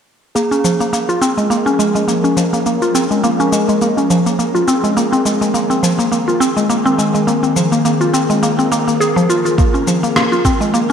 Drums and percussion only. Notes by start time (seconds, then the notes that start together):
0.36 shaker
0.52 shaker
0.65 shaker
0.81 shaker
0.94 shaker
1.09 shaker
1.22 shaker
1.38 shaker
1.51 shaker
1.67 shaker
1.80 shaker
1.96 shaker
2.09 shaker
2.25 shaker
2.37 shaker
2.54 shaker
2.66 shaker
2.82 shaker
2.95 shaker
3.11 shaker
3.24 shaker
3.40 shaker
3.53 shaker
3.69 shaker
3.82 shaker
3.98 shaker
4.10 shaker
4.27 shaker
4.40 shaker
4.55 shaker
4.68 shaker
4.84 shaker
4.97 shaker
5.13 shaker
5.26 shaker
5.42 shaker
5.55 shaker
5.71 shaker
5.84 shaker
6.00 shaker
6.13 shaker
6.29 shaker
6.42 shaker
6.57 shaker
6.70 shaker
6.86 shaker
6.99 shaker
7.15 shaker
7.28 shaker
7.44 shaker
7.57 shaker
7.72 shaker
7.85 shaker
8.01 shaker
8.14 shaker
8.30 shaker
8.43 shaker
8.59 shaker
8.72 shaker
8.88 shaker
9.01 shaker
9.17 shaker
9.30 shaker
9.46 shaker
9.58 kick, shaker
9.75 shaker
9.88 shaker
10.04 shaker
10.16 cross-stick, shaker
10.32 shaker
10.45 kick, shaker
10.61 shaker
10.74 shaker